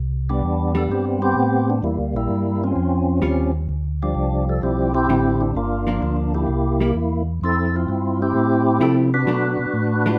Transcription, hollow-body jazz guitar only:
0, 0, Header, 1, 2, 480
1, 0, Start_track
1, 0, Key_signature, 0, "minor"
1, 0, Tempo, 464756
1, 1891, Time_signature, 4, 2, 24, 8
1, 10521, End_track
2, 0, Start_track
2, 0, Title_t, "Hollow-body jazz guitar"
2, 0, Program_c, 0, 26
2, 772, Note_on_c, 0, 55, 68
2, 784, Note_on_c, 0, 62, 62
2, 1377, Note_off_c, 0, 55, 0
2, 1383, Note_off_c, 0, 62, 0
2, 3323, Note_on_c, 0, 55, 64
2, 3329, Note_on_c, 0, 61, 64
2, 3335, Note_on_c, 0, 65, 68
2, 3623, Note_off_c, 0, 55, 0
2, 3626, Note_off_c, 0, 61, 0
2, 3629, Note_off_c, 0, 65, 0
2, 5260, Note_on_c, 0, 50, 59
2, 5264, Note_on_c, 0, 55, 52
2, 5266, Note_on_c, 0, 60, 67
2, 5737, Note_off_c, 0, 50, 0
2, 5739, Note_off_c, 0, 55, 0
2, 5740, Note_off_c, 0, 60, 0
2, 6059, Note_on_c, 0, 53, 55
2, 6070, Note_on_c, 0, 58, 66
2, 6080, Note_on_c, 0, 62, 59
2, 6663, Note_off_c, 0, 53, 0
2, 6668, Note_off_c, 0, 58, 0
2, 6673, Note_off_c, 0, 62, 0
2, 7027, Note_on_c, 0, 55, 57
2, 7038, Note_on_c, 0, 58, 59
2, 7040, Note_on_c, 0, 64, 60
2, 7162, Note_off_c, 0, 55, 0
2, 7167, Note_off_c, 0, 58, 0
2, 7168, Note_off_c, 0, 64, 0
2, 9094, Note_on_c, 0, 53, 49
2, 9099, Note_on_c, 0, 57, 60
2, 9104, Note_on_c, 0, 64, 59
2, 9110, Note_on_c, 0, 67, 63
2, 9390, Note_off_c, 0, 53, 0
2, 9392, Note_off_c, 0, 57, 0
2, 9394, Note_off_c, 0, 64, 0
2, 9398, Note_off_c, 0, 67, 0
2, 9574, Note_on_c, 0, 54, 66
2, 9586, Note_on_c, 0, 57, 63
2, 9589, Note_on_c, 0, 62, 66
2, 9870, Note_off_c, 0, 54, 0
2, 9875, Note_off_c, 0, 57, 0
2, 9877, Note_off_c, 0, 62, 0
2, 10389, Note_on_c, 0, 52, 66
2, 10391, Note_on_c, 0, 56, 69
2, 10400, Note_on_c, 0, 65, 67
2, 10402, Note_on_c, 0, 62, 68
2, 10521, Note_off_c, 0, 52, 0
2, 10521, Note_off_c, 0, 56, 0
2, 10521, Note_off_c, 0, 62, 0
2, 10521, Note_off_c, 0, 65, 0
2, 10521, End_track
0, 0, End_of_file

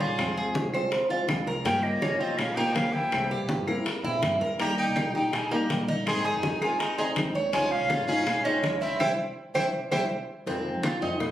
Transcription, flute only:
0, 0, Header, 1, 2, 480
1, 0, Start_track
1, 0, Key_signature, -4, "minor"
1, 0, Tempo, 367197
1, 241, Time_signature, 4, 2, 24, 8
1, 14788, End_track
2, 0, Start_track
2, 0, Title_t, "Flute"
2, 0, Program_c, 0, 73
2, 2, Note_on_c, 0, 84, 96
2, 482, Note_off_c, 0, 84, 0
2, 2160, Note_on_c, 0, 79, 112
2, 2391, Note_on_c, 0, 75, 95
2, 2410, Note_off_c, 0, 79, 0
2, 2858, Note_off_c, 0, 75, 0
2, 2866, Note_on_c, 0, 75, 90
2, 3108, Note_on_c, 0, 77, 92
2, 3127, Note_off_c, 0, 75, 0
2, 3349, Note_on_c, 0, 79, 99
2, 3369, Note_off_c, 0, 77, 0
2, 3592, Note_on_c, 0, 77, 92
2, 3611, Note_off_c, 0, 79, 0
2, 3829, Note_on_c, 0, 79, 90
2, 3849, Note_off_c, 0, 77, 0
2, 4317, Note_off_c, 0, 79, 0
2, 6010, Note_on_c, 0, 82, 110
2, 6231, Note_off_c, 0, 82, 0
2, 6254, Note_on_c, 0, 79, 87
2, 6697, Note_off_c, 0, 79, 0
2, 6733, Note_on_c, 0, 79, 89
2, 6977, Note_on_c, 0, 80, 83
2, 6997, Note_off_c, 0, 79, 0
2, 7217, Note_on_c, 0, 82, 79
2, 7237, Note_off_c, 0, 80, 0
2, 7452, Note_off_c, 0, 82, 0
2, 7934, Note_on_c, 0, 84, 105
2, 8168, Note_on_c, 0, 80, 93
2, 8187, Note_off_c, 0, 84, 0
2, 8635, Note_off_c, 0, 80, 0
2, 8643, Note_on_c, 0, 80, 88
2, 8876, Note_on_c, 0, 82, 90
2, 8895, Note_off_c, 0, 80, 0
2, 9115, Note_off_c, 0, 82, 0
2, 9123, Note_on_c, 0, 84, 80
2, 9201, Note_off_c, 0, 84, 0
2, 9843, Note_on_c, 0, 80, 114
2, 10084, Note_on_c, 0, 77, 101
2, 10103, Note_off_c, 0, 80, 0
2, 10551, Note_off_c, 0, 77, 0
2, 10559, Note_on_c, 0, 77, 100
2, 11036, Note_on_c, 0, 75, 91
2, 11056, Note_off_c, 0, 77, 0
2, 11266, Note_off_c, 0, 75, 0
2, 11274, Note_on_c, 0, 75, 82
2, 11353, Note_off_c, 0, 75, 0
2, 11508, Note_on_c, 0, 76, 90
2, 11739, Note_off_c, 0, 76, 0
2, 11751, Note_on_c, 0, 79, 94
2, 11910, Note_off_c, 0, 79, 0
2, 12474, Note_on_c, 0, 79, 98
2, 12632, Note_off_c, 0, 79, 0
2, 12964, Note_on_c, 0, 79, 97
2, 13118, Note_off_c, 0, 79, 0
2, 14788, End_track
0, 0, End_of_file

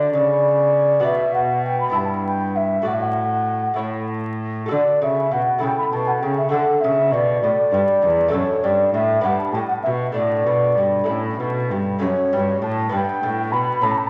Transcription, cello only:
0, 0, Header, 1, 2, 480
1, 0, Start_track
1, 0, Key_signature, 2, "major"
1, 0, Tempo, 595829
1, 839, Time_signature, 6, 3, 24, 8
1, 1323, Tempo, 612245
1, 4203, Tempo, 602410
1, 7563, Tempo, 621118
1, 9483, Tempo, 603622
1, 11139, End_track
2, 0, Start_track
2, 0, Title_t, "Cello"
2, 0, Program_c, 0, 42
2, 0, Note_on_c, 0, 50, 63
2, 108, Note_off_c, 0, 50, 0
2, 120, Note_on_c, 0, 49, 56
2, 823, Note_off_c, 0, 49, 0
2, 840, Note_on_c, 0, 47, 62
2, 1547, Note_off_c, 0, 47, 0
2, 1552, Note_on_c, 0, 43, 53
2, 2262, Note_off_c, 0, 43, 0
2, 2275, Note_on_c, 0, 45, 55
2, 2987, Note_off_c, 0, 45, 0
2, 3000, Note_on_c, 0, 45, 52
2, 3710, Note_off_c, 0, 45, 0
2, 3732, Note_on_c, 0, 50, 54
2, 3795, Note_off_c, 0, 50, 0
2, 3970, Note_on_c, 0, 49, 50
2, 4200, Note_off_c, 0, 49, 0
2, 4210, Note_on_c, 0, 47, 45
2, 4274, Note_off_c, 0, 47, 0
2, 4436, Note_on_c, 0, 49, 48
2, 4500, Note_off_c, 0, 49, 0
2, 4684, Note_on_c, 0, 47, 53
2, 4912, Note_off_c, 0, 47, 0
2, 4917, Note_on_c, 0, 49, 55
2, 5155, Note_off_c, 0, 49, 0
2, 5160, Note_on_c, 0, 50, 61
2, 5224, Note_off_c, 0, 50, 0
2, 5400, Note_on_c, 0, 49, 56
2, 5636, Note_on_c, 0, 47, 61
2, 5648, Note_off_c, 0, 49, 0
2, 5878, Note_off_c, 0, 47, 0
2, 5881, Note_on_c, 0, 45, 58
2, 5945, Note_off_c, 0, 45, 0
2, 6119, Note_on_c, 0, 43, 66
2, 6183, Note_off_c, 0, 43, 0
2, 6360, Note_on_c, 0, 40, 67
2, 6595, Note_off_c, 0, 40, 0
2, 6601, Note_on_c, 0, 42, 67
2, 6665, Note_off_c, 0, 42, 0
2, 6842, Note_on_c, 0, 43, 59
2, 7072, Note_off_c, 0, 43, 0
2, 7077, Note_on_c, 0, 45, 53
2, 7313, Note_off_c, 0, 45, 0
2, 7317, Note_on_c, 0, 43, 58
2, 7381, Note_off_c, 0, 43, 0
2, 7559, Note_on_c, 0, 45, 58
2, 7621, Note_off_c, 0, 45, 0
2, 7798, Note_on_c, 0, 47, 53
2, 8029, Note_off_c, 0, 47, 0
2, 8034, Note_on_c, 0, 45, 52
2, 8271, Note_on_c, 0, 47, 50
2, 8282, Note_off_c, 0, 45, 0
2, 8509, Note_on_c, 0, 43, 46
2, 8520, Note_off_c, 0, 47, 0
2, 8750, Note_off_c, 0, 43, 0
2, 8754, Note_on_c, 0, 45, 51
2, 8993, Note_off_c, 0, 45, 0
2, 8997, Note_on_c, 0, 47, 50
2, 9240, Note_on_c, 0, 43, 51
2, 9251, Note_off_c, 0, 47, 0
2, 9472, Note_off_c, 0, 43, 0
2, 9477, Note_on_c, 0, 42, 68
2, 9540, Note_off_c, 0, 42, 0
2, 9717, Note_on_c, 0, 43, 57
2, 9948, Note_off_c, 0, 43, 0
2, 9953, Note_on_c, 0, 45, 59
2, 10192, Note_off_c, 0, 45, 0
2, 10201, Note_on_c, 0, 43, 62
2, 10264, Note_off_c, 0, 43, 0
2, 10442, Note_on_c, 0, 45, 62
2, 10684, Note_on_c, 0, 47, 67
2, 10696, Note_off_c, 0, 45, 0
2, 10917, Note_off_c, 0, 47, 0
2, 10922, Note_on_c, 0, 45, 68
2, 10985, Note_off_c, 0, 45, 0
2, 11139, End_track
0, 0, End_of_file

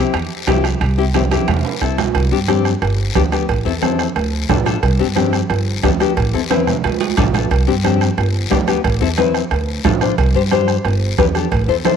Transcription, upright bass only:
0, 0, Header, 1, 2, 480
1, 0, Start_track
1, 0, Key_signature, 0, "major"
1, 0, Tempo, 334821
1, 1160, Time_signature, 4, 2, 24, 8
1, 17152, End_track
2, 0, Start_track
2, 0, Title_t, "Upright bass"
2, 0, Program_c, 0, 32
2, 196, Note_on_c, 0, 40, 86
2, 389, Note_off_c, 0, 40, 0
2, 676, Note_on_c, 0, 36, 77
2, 1062, Note_off_c, 0, 36, 0
2, 1159, Note_on_c, 0, 36, 102
2, 1929, Note_off_c, 0, 36, 0
2, 2124, Note_on_c, 0, 40, 88
2, 2315, Note_off_c, 0, 40, 0
2, 2601, Note_on_c, 0, 36, 78
2, 2986, Note_off_c, 0, 36, 0
2, 3080, Note_on_c, 0, 36, 91
2, 3273, Note_off_c, 0, 36, 0
2, 3324, Note_on_c, 0, 43, 80
2, 3901, Note_off_c, 0, 43, 0
2, 4041, Note_on_c, 0, 31, 85
2, 4427, Note_off_c, 0, 31, 0
2, 4522, Note_on_c, 0, 38, 90
2, 4908, Note_off_c, 0, 38, 0
2, 5002, Note_on_c, 0, 33, 84
2, 5196, Note_off_c, 0, 33, 0
2, 5245, Note_on_c, 0, 40, 78
2, 5821, Note_off_c, 0, 40, 0
2, 5965, Note_on_c, 0, 38, 94
2, 6349, Note_off_c, 0, 38, 0
2, 6443, Note_on_c, 0, 33, 88
2, 6828, Note_off_c, 0, 33, 0
2, 6920, Note_on_c, 0, 36, 91
2, 7114, Note_off_c, 0, 36, 0
2, 7167, Note_on_c, 0, 43, 76
2, 7742, Note_off_c, 0, 43, 0
2, 7885, Note_on_c, 0, 31, 93
2, 8269, Note_off_c, 0, 31, 0
2, 8365, Note_on_c, 0, 38, 81
2, 8749, Note_off_c, 0, 38, 0
2, 8846, Note_on_c, 0, 33, 98
2, 9037, Note_off_c, 0, 33, 0
2, 9091, Note_on_c, 0, 40, 76
2, 9664, Note_off_c, 0, 40, 0
2, 9809, Note_on_c, 0, 38, 89
2, 10190, Note_off_c, 0, 38, 0
2, 10284, Note_on_c, 0, 33, 86
2, 10667, Note_off_c, 0, 33, 0
2, 10766, Note_on_c, 0, 36, 94
2, 10956, Note_off_c, 0, 36, 0
2, 11005, Note_on_c, 0, 43, 83
2, 11579, Note_off_c, 0, 43, 0
2, 11722, Note_on_c, 0, 31, 94
2, 12105, Note_off_c, 0, 31, 0
2, 12203, Note_on_c, 0, 38, 93
2, 12585, Note_off_c, 0, 38, 0
2, 12680, Note_on_c, 0, 33, 95
2, 12871, Note_off_c, 0, 33, 0
2, 12918, Note_on_c, 0, 40, 76
2, 13493, Note_off_c, 0, 40, 0
2, 13636, Note_on_c, 0, 38, 90
2, 14020, Note_off_c, 0, 38, 0
2, 14115, Note_on_c, 0, 33, 90
2, 14499, Note_off_c, 0, 33, 0
2, 14596, Note_on_c, 0, 36, 94
2, 14788, Note_off_c, 0, 36, 0
2, 14831, Note_on_c, 0, 43, 88
2, 15408, Note_off_c, 0, 43, 0
2, 15552, Note_on_c, 0, 31, 101
2, 15936, Note_off_c, 0, 31, 0
2, 16033, Note_on_c, 0, 40, 89
2, 16416, Note_off_c, 0, 40, 0
2, 16513, Note_on_c, 0, 33, 97
2, 16704, Note_off_c, 0, 33, 0
2, 16750, Note_on_c, 0, 40, 83
2, 17152, Note_off_c, 0, 40, 0
2, 17152, End_track
0, 0, End_of_file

